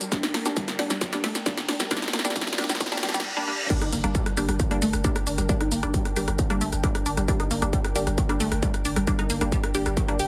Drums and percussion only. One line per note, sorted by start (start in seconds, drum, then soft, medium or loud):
0.01 closed hi-hat medium
0.01 shaker medium
0.12 kick loud
0.12 snare medium
0.12 closed hi-hat medium
0.12 shaker medium
0.23 snare medium
0.23 open hi-hat medium
0.23 shaker soft
0.34 snare medium
0.34 open hi-hat loud
0.46 snare medium
0.46 closed hi-hat medium
0.46 shaker medium
0.57 kick loud
0.57 snare loud
0.57 closed hi-hat medium
0.57 shaker medium
0.68 snare medium
0.68 closed hi-hat medium
0.68 shaker soft
0.79 snare medium
0.79 open hi-hat loud
0.90 snare medium
0.90 closed hi-hat medium
0.90 shaker medium
1.01 kick loud
1.01 snare loud
1.01 closed hi-hat medium
1.01 shaker medium
1.13 snare medium
1.13 closed hi-hat medium
1.13 shaker soft
1.24 snare loud
1.24 open hi-hat loud
1.35 snare medium
1.35 closed hi-hat medium
1.35 shaker medium
1.46 kick loud
1.46 snare loud
1.46 closed hi-hat medium
1.46 shaker medium
1.58 snare medium
1.58 closed hi-hat medium
1.58 shaker soft
1.69 snare loud
1.69 open hi-hat loud
1.80 snare medium
1.80 closed hi-hat medium
1.80 shaker medium
1.91 kick loud
1.91 snare loud
1.91 closed hi-hat medium
1.91 shaker medium
1.97 snare medium
2.02 snare medium
2.02 closed hi-hat medium
2.02 shaker soft
2.08 snare medium
2.13 snare loud
2.13 open hi-hat loud
2.19 snare medium
2.25 snare medium
2.25 closed hi-hat medium
2.25 shaker medium
2.30 snare medium
2.36 kick loud
2.36 snare loud
2.36 closed hi-hat medium
2.36 shaker medium
2.41 snare medium
2.47 snare loud
2.47 closed hi-hat medium
2.47 shaker soft
2.53 snare loud
2.58 snare loud
2.58 open hi-hat loud
2.64 snare loud
2.69 snare medium
2.69 closed hi-hat medium
2.69 shaker medium
2.75 snare medium
2.80 kick loud
2.80 snare loud
2.80 closed hi-hat medium
2.80 shaker medium
2.86 snare medium
2.92 snare loud
2.92 open hi-hat medium
2.92 shaker soft
2.97 snare loud
3.03 snare loud
3.03 open hi-hat loud
3.09 snare loud
3.14 snare loud
3.14 closed hi-hat medium
3.14 shaker medium
3.20 snare loud
3.70 kick loud
3.70 closed hi-hat medium
3.70 crash loud
3.70 shaker soft
3.82 cross-stick medium
3.82 closed hi-hat medium
3.82 shaker soft
3.92 open hi-hat loud
3.92 shaker medium
4.04 cross-stick medium
4.04 closed hi-hat medium
4.04 shaker soft
4.15 kick loud
4.15 closed hi-hat medium
4.15 shaker soft
4.26 cross-stick medium
4.26 closed hi-hat medium
4.26 shaker soft
4.37 open hi-hat loud
4.37 shaker medium
4.49 cross-stick medium
4.49 closed hi-hat medium
4.49 shaker soft
4.60 kick loud
4.60 closed hi-hat medium
4.60 shaker soft
4.71 cross-stick medium
4.71 closed hi-hat medium
4.71 shaker soft
4.82 open hi-hat loud
4.82 shaker medium
4.93 cross-stick medium
4.93 closed hi-hat medium
4.93 shaker soft
5.04 kick loud
5.04 closed hi-hat medium
5.04 shaker soft
5.16 cross-stick loud
5.16 closed hi-hat medium
5.16 shaker soft
5.27 open hi-hat loud
5.27 shaker medium
5.38 cross-stick medium
5.38 closed hi-hat medium
5.38 shaker soft
5.49 kick loud
5.49 closed hi-hat medium
5.49 shaker soft
5.61 cross-stick medium
5.61 closed hi-hat medium
5.61 shaker soft
5.72 open hi-hat loud
5.72 shaker medium
5.83 cross-stick medium
5.83 closed hi-hat medium
5.83 shaker soft
5.94 kick loud
5.94 closed hi-hat medium
5.94 shaker soft
6.05 cross-stick medium
6.05 closed hi-hat medium
6.05 shaker soft
6.16 open hi-hat loud
6.16 shaker medium
6.28 cross-stick medium
6.28 closed hi-hat medium
6.28 shaker soft
6.39 kick loud
6.39 closed hi-hat medium
6.39 shaker soft
6.50 cross-stick medium
6.50 closed hi-hat medium
6.50 shaker soft
6.61 open hi-hat loud
6.61 shaker medium
6.73 cross-stick medium
6.73 closed hi-hat medium
6.73 shaker soft
6.84 kick loud
6.84 closed hi-hat medium
6.84 shaker soft
6.95 cross-stick medium
6.95 closed hi-hat medium
6.95 shaker soft
7.06 open hi-hat loud
7.06 shaker medium
7.17 cross-stick medium
7.17 closed hi-hat medium
7.17 shaker soft
7.28 kick loud
7.28 closed hi-hat medium
7.28 shaker soft
7.40 cross-stick medium
7.40 closed hi-hat medium
7.40 shaker soft
7.51 open hi-hat loud
7.51 shaker medium
7.62 cross-stick medium
7.62 closed hi-hat medium
7.62 shaker soft
7.73 kick loud
7.73 closed hi-hat medium
7.73 shaker soft
7.85 cross-stick medium
7.85 closed hi-hat medium
7.85 shaker soft
7.96 open hi-hat loud
7.96 shaker medium
8.07 cross-stick medium
8.07 closed hi-hat medium
8.07 shaker soft
8.18 kick loud
8.18 closed hi-hat medium
8.18 shaker soft
8.29 cross-stick medium
8.29 closed hi-hat medium
8.29 shaker soft
8.40 open hi-hat loud
8.40 shaker medium
8.52 cross-stick medium
8.52 closed hi-hat medium
8.52 shaker soft
8.63 kick loud
8.63 closed hi-hat medium
8.63 shaker soft
8.74 cross-stick medium
8.74 closed hi-hat medium
8.74 shaker soft
8.85 open hi-hat loud
8.85 shaker medium
8.96 cross-stick medium
8.96 closed hi-hat medium
8.96 shaker soft
9.07 kick loud
9.07 closed hi-hat medium
9.07 shaker soft
9.19 cross-stick medium
9.19 closed hi-hat medium
9.19 shaker soft
9.30 open hi-hat loud
9.30 shaker medium
9.41 cross-stick medium
9.41 closed hi-hat medium
9.41 shaker soft
9.52 kick loud
9.52 closed hi-hat medium
9.52 shaker soft
9.64 cross-stick loud
9.64 closed hi-hat medium
9.64 shaker soft
9.75 open hi-hat loud
9.75 shaker medium
9.86 cross-stick loud
9.86 closed hi-hat medium
9.86 shaker soft
9.97 kick loud
9.97 closed hi-hat medium
9.97 shaker soft
10.08 cross-stick medium
10.08 closed hi-hat medium
10.08 shaker soft
10.19 open hi-hat loud
10.19 shaker medium